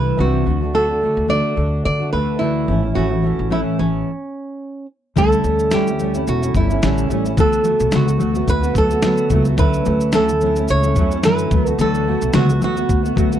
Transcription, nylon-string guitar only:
Already playing: B4
0.20 F#4
0.75 A4
1.30 D5
1.85 D5
2.13 B4
2.39 E4
2.95 F#4
3.52 E4
3.79 C#4
5.18 A4
5.74 G4
6.29 F#4
6.56 E4
7.40 A4
7.96 F#4
8.49 B4
8.78 A4
9.59 B4
10.15 A4
10.70 C#5
11.25 B4
11.69 A4
11.81 A4
12.35 F#4
12.64 F#4

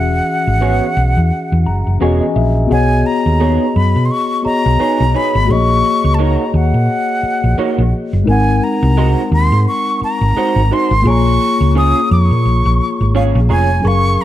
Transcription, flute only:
Already playing: F#5
2.72 G#5
3.06 A#5
3.76 B5
4.05 C6
4.11 C#6
4.46 A#5
5.16 B5
5.51 C#6
6.14 A5
6.21 A#5
6.56 F#5
8.29 G#5
8.64 A#5
9.33 C6
9.68 C#6
10.04 A#5
10.73 C6
11.08 C#6
11.78 D#6
12.12 C#6
13.16 F5
13.51 G#5
13.87 C#6
14.21 A#5

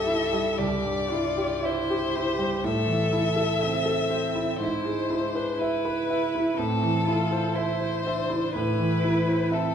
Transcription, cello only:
Already playing: A4
0.58 G4
1.10 F4
1.63 E4
2.15 G4
2.66 A4
3.63 C4
4.61 E4
5.09 D4
5.58 E4
6.55 C4
7.04 F4
7.54 E4
8.05 D4
8.53 E4
9.51 C4

